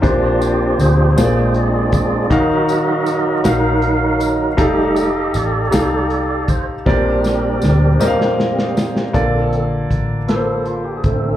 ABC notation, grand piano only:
X:1
M:6/8
L:1/8
Q:3/8=53
K:Bb
V:1 name="Grand piano"
[B,,B,DGc]3 [B,,B,F_Acd]3 | [E,E_GBf]3 [EGBf]3 | [EGAf]3 [EGAf]3 | [B,,CGBd]3 [CGBef]3 |
[D,B,FAd]3 [B,FA_c=c]3 |]